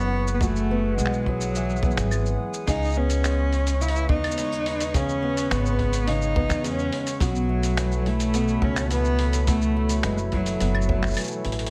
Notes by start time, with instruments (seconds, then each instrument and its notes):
Already playing: upright bass F#1, steel-string acoustic guitar E3 G#3 B3 C#4 F#4, cello B3, ambient pad G#4 F#5 C#6
0.27 cabasa
0.34 cello B3
0.41 steel-string acoustic guitar E3 F#4, cello A3, ambient pad D#6, kick, cabasa
0.56 cabasa
0.71 steel-string acoustic guitar B3
0.97 upright bass B1, cello G#3, steel-string acoustic guitar G#3, cabasa
1.06 finger snap
1.13 cabasa
1.26 cello F#3, steel-string acoustic guitar C#4, kick
1.41 cabasa
1.55 steel-string acoustic guitar E3, cabasa
1.69 cabasa
1.76 cabasa
1.83 steel-string acoustic guitar B3, kick, cabasa
1.91 cabasa
1.97 upright bass G#1, finger snap, kick, cabasa
2.11 steel-string acoustic guitar G#3, cabasa, claves
2.26 cabasa
2.54 cabasa
2.67 upright bass C#2, steel-string acoustic guitar C#3 G#4, cello D#4, ambient pad B4 C#5 C#6, kick, open hi-hat, cabasa
2.82 cabasa
2.84 cabasa
2.86 cabasa
2.89 cabasa
2.91 cabasa
2.94 steel-string acoustic guitar B3, cello C#4, cabasa
3.10 open hi-hat, cabasa
3.24 steel-string acoustic guitar G#3, finger snap, open hi-hat, cabasa
3.53 open hi-hat, cabasa
3.67 open hi-hat, cabasa
3.81 steel-string acoustic guitar C#3, cello E4, cabasa
3.88 open hi-hat
3.96 cabasa
4.09 upright bass D#2, steel-string acoustic guitar B3, cello D#4, kick
4.24 open hi-hat, claves
4.31 cabasa
4.38 steel-string acoustic guitar G#3, open hi-hat, cabasa
4.52 cabasa
4.66 open hi-hat
4.80 open hi-hat, cabasa
4.94 steel-string acoustic guitar C#3 G#4, cello C#4, kick, open hi-hat, cabasa
5.09 cabasa
5.22 steel-string acoustic guitar B3
5.37 open hi-hat, cabasa
5.51 upright bass G#1, steel-string acoustic guitar G#3, cello B3, finger snap, open hi-hat, cabasa
5.66 cabasa
5.79 kick, open hi-hat
5.93 open hi-hat, cabasa
6.07 steel-string acoustic guitar C#3, cello D#4, open hi-hat
6.22 cabasa
6.36 steel-string acoustic guitar B3, kick
6.49 upright bass E2, finger snap, kick, open hi-hat, cabasa
6.64 steel-string acoustic guitar G#3, cello C#4, open hi-hat, cabasa
6.79 cabasa
6.92 open hi-hat
7.07 open hi-hat, cabasa
7.19 upright bass B1, steel-string acoustic guitar B2 F#4, cello F#3, ambient pad A4 B5, kick, open hi-hat, cabasa
7.35 cabasa
7.49 steel-string acoustic guitar A3
7.63 open hi-hat, cabasa
7.77 steel-string acoustic guitar E3, finger snap, open hi-hat, cabasa
7.92 cabasa
8.06 cello A3, steel-string acoustic guitar E4, open hi-hat
8.20 open hi-hat, cabasa
8.34 steel-string acoustic guitar B2, open hi-hat, cabasa
8.48 cabasa
8.62 upright bass C#2, steel-string acoustic guitar A3, cello C#4, kick
8.76 finger snap, open hi-hat, cabasa, claves
8.91 steel-string acoustic guitar E3, cello B3, open hi-hat, cabasa
9.05 cabasa
9.19 open hi-hat
9.33 open hi-hat, cabasa
9.47 steel-string acoustic guitar B2 F#4, cello A3, kick, open hi-hat, cabasa
9.62 cabasa
9.76 steel-string acoustic guitar A3
9.89 open hi-hat, cabasa
10.03 upright bass F#1, steel-string acoustic guitar E3, cello G#3, finger snap, open hi-hat, cabasa
10.18 cabasa
10.32 cello F#3, steel-string acoustic guitar E4, kick, open hi-hat
10.46 open hi-hat, cabasa
10.60 upright bass F#1, steel-string acoustic guitar B2, open hi-hat, cabasa
10.75 claves
10.82 cabasa
10.89 steel-string acoustic guitar A3, kick
11.03 finger snap, kick, cabasa
11.07 cabasa
11.10 cabasa
11.14 steel-string acoustic guitar E3, open hi-hat, cabasa, claves
11.17 cabasa
11.20 cabasa
11.24 cabasa
11.27 cabasa
11.31 cabasa
11.45 upright bass A1, closed hi-hat
11.52 closed hi-hat
11.59 closed hi-hat
11.66 closed hi-hat